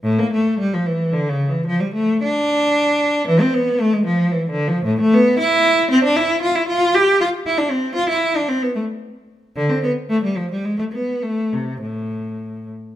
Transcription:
\new Staff \with { instrumentName = "Cello" } { \time 3/4 \key a \minor \tempo 4 = 113 a,16 bes16 a8 g16 f16 e8 \tuplet 3/2 { d8 cis8 e8 } | f16 g16 a8 d'2 | e16 c'16 b8 a16 gis16 f8 \tuplet 3/2 { e8 d8 f8 } | a,16 a16 b8 e'4 c'16 d'16 e'8 |
f'16 e'16 f'8 g'8 f'8 e'16 d'16 c'8 | f'16 e'8 d'16 c'16 b16 a8 r4 | d16 c'16 b8 a16 g16 f16 g16 gis16 a16 b8 | a8 c8 a,4. r8 | }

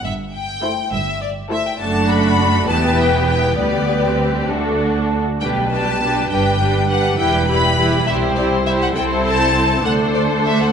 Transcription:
<<
  \new Staff \with { instrumentName = "Violin section" } { \time 6/8 \key g \major \tempo 4. = 68 e''8 g''4 e''8 d''8 e''16 g''16 | a''8 b''4 a''8 g''8 g''8 | d''4. r4. | g''8 a''4 g''4 fis''8 |
g''8 b''4 e''8 d''8 e''16 fis''16 | g''8 a''4 fis''8 d''8 e''16 fis''16 | }
  \new Staff \with { instrumentName = "Violin section" } { \time 6/8 \key g \major r4 <a' c''>8 r4 <a' c''>8 | <fis' a'>4. <g' b'>4. | <g' b'>4. <fis' a'>4 r8 | <g' b'>8 <g' b'>8 <g' b'>8 <g' b'>8 <g' b'>8 <g' b'>8 |
<g' b'>8 <g' b'>8 <g' b'>8 <g' c''>8 <g' c''>8 <g' c''>8 | <a' c''>4. <a' c''>4. | }
  \new Staff \with { instrumentName = "Viola section" } { \time 6/8 \key g \major << { r4 e'8 r4 e'8 | d'4. b4. | b8. c'8. d'4~ d'16 r16 | d'8 d'8 d'8 d'8 d'8 d'8 |
e'8 e'8 e'8 e'8 e'8 e'8 | e'4. d'4. | } \\ { r4 a8 r4 a8 | a4. e4. | g4. a4 r8 | g8 g8 g8 g8 g8 g8 |
g8 g8 g8 g8 g8 g8 | c'4. a4. | } >> }
  \new Staff \with { instrumentName = "Cello section" } { \clef bass \time 6/8 \key g \major g,4. g,4. | fis,4. e,4. | d,4. d,4 r8 | b,4. g,4. |
e,4. c,4. | c,4. d,4. | }
  \new Staff \with { instrumentName = "Double bass section" } { \clef bass \time 6/8 \key g \major g,,4. g,,4. | fis,,4. e,,4. | d,4. d,4 r8 | b,,4. g,,4. |
e,,4. c,4. | c,4. d,4. | }
>>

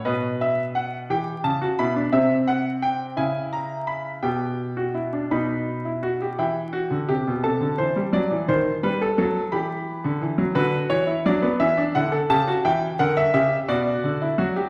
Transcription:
<<
  \new Staff \with { instrumentName = "Grand piano" } { \time 6/8 \key e \minor \tempo 4. = 57 << { dis''8 e''8 fis''8 g''8 a''8 b''8 | e''8 fis''8 g''8 gis''8 ais''8 b''8 | g''4. b''4. | g''4. a''4.~ |
a''4. b''4. | b'8 cis''8 d''8 e''8 fis''8 a''8 | g''8 fis''16 e''16 e''8 d''4. | } \\ { b'4. g'8. fis'16 e'16 d'16 | c'4. e'4. | g'8. fis'16 e'16 d'16 dis'8. e'16 fis'16 g'16 | e'8 fis'8 g'8 a'8 c''8 d''8 |
bis'8 b'16 a'16 a'8 g'4. | fis'8. e'16 d'16 b16 cis'16 d'16 e'16 a'16 g'16 fis'16 | e'8 ais'8 g'8 fis'8. e'16 fis'16 g'16 | } >> }
  \new Staff \with { instrumentName = "Grand piano" } { \clef bass \time 6/8 \key e \minor b,4. e8 cis8 b,8 | c4. cis4. | b,4. b,4. | e8. d16 c16 b,16 c16 d16 e16 g16 fis16 e16 |
dis8 g8 fis8 e8. d16 e16 fis16 | d8 e8 fis8 e8 d8 cis8 | e8 d8 cis8 b,8 d8 fis8 | }
>>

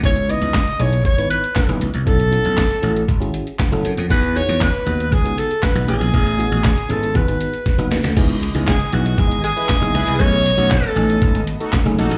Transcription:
<<
  \new Staff \with { instrumentName = "Alto saxophone" } { \time 4/4 \key cis \minor \tempo 4 = 118 cis''8 dis''4 cis''8 cis''8 b'4 r8 | a'2 r2 | b'8 cis''8 b'4 gis'8 a'8 b'8 gis'8~ | gis'4. a'8 b'4. r8 |
r4 gis'8 fis'8 gis'8 gis'4. | cis''4 a'4. r4. | }
  \new Staff \with { instrumentName = "Analog polysynth" } { \time 4/4 \key cis \minor r1 | r1 | r1 | r1 |
r2 r8. <e' gis' b'>16 r8 <e' gis' b'>8 | r2 r8. <dis' fis' a'>16 r8 <dis' fis' a'>8 | }
  \new Staff \with { instrumentName = "FM electric piano" } { \time 4/4 \key cis \minor <b dis' e' gis'>16 r16 <b dis' e' b'>8 r8 <b dis' e' gis'>16 r8 <b dis' e' b'>8 r8 <b dis' e' b'>16 r8 | <cis' e' fis' a'>16 r16 <cis' e' fis' a'>8 r8 <cis' e' fis' a'>16 r8 <cis' e' fis' gis'>8 r8 <cis' e' fis' a'>16 r8 | <b dis' fis' gis'>16 r16 <b dis' fis' gis'>8 r8 <b dis' fis' b'>16 r8 <b dis' fis' gis'>8 r8 <b dis' fis' b'>16 <b cis' e' gis'>8~ | <b cis' e' gis'>16 r16 <b cis' e' fis'>8 r8 <b cis' e' gis'>16 r16 <b dis' fis' gis'>16 <b dis' fis' gis'>8 r8 <b dis' fis' b'>16 r8 |
<b dis' e' gis'>16 r8 <b dis' e' gis'>16 r8 <b dis' e' gis'>8. r4 <b dis' e' gis'>16 r8 | <a cis' dis' gis'>16 r8 <a cis' dis' fis'>16 r8 <a cis' dis' gis''>8. r4 <a cis' dis' gis'>16 r8 | }
  \new Staff \with { instrumentName = "String section" } { \clef bass \time 4/4 \key cis \minor << { r1 | r1 | r1 | r1 |
<cis b dis''>1~ | <cis b dis''>1 | } \\ { r1 | r1 | r1 | r1 |
<e gis>1 | <fis a>1 | } >> }
  \new Staff \with { instrumentName = "Slap bass" } { \clef bass \time 4/4 \key cis \minor cis,8. cis,8 r16 b,,8 gis,,8 r8. fis,,16 cis,16 bis,,16 | b,,8. b,,8 r16 a,,8 gis,,8 r8. fis,,16 fis,16 eis,16 | e,8. e,8 r16 dis,8 cis,8 r8. b,,16 a,,16 ais,,16 | a,,8. a,,8 r16 gis,,8 gis,,8 r8. fis,,16 dis,16 d,16 |
cis,8. cis,8 r16 b,,8 gis,,8 r8. fis,,16 cis,16 bis,,16 | b,,8. b,,8 r16 a,,8 gis,,8 r8. fis,,16 ais,,16 a,,16 | }
  \new DrumStaff \with { instrumentName = "Drums" } \drummode { \time 4/4 <hh bd>16 hh16 hh16 hh16 <hc hh bd sn>16 hh16 hh16 hh16 <hh bd>16 hh16 hh16 hh16 <hc hh bd sn>16 hh16 hh16 hh16 | <hh bd>16 hh16 hh16 hh16 <hc hh bd sn>16 hh16 hh16 hh16 <hh bd>16 hh16 hh16 hh16 <hc hh bd sn>16 hh16 hh16 hh16 | <hh bd>16 hh16 hh16 hh16 <hc hh bd sn>16 hh16 hh16 hh16 <hh bd>16 hh16 hh16 hh16 <hc hh bd sn>16 hh16 hh16 hh16 | <hh bd>16 hh16 hh16 hh16 <hc hh bd sn>16 hh16 hh16 hh16 <hh bd>16 hh16 hh16 hh16 <hh bd sn>16 hh16 <hho sn>16 <hh sn>16 |
<cymc hh bd>16 hh16 hh16 hh16 <hc hh bd sn>16 hh16 hh16 hh16 <hh bd>16 hh16 hh16 hh16 <hc hh bd sn>16 hh16 hh16 hh16 | <hh bd>16 hh16 hh16 hh16 <hc hh bd sn>16 hh16 hh16 hh16 <hh bd>16 hh16 hh16 hh16 <hc hh bd sn>16 hh16 hh16 hh16 | }
>>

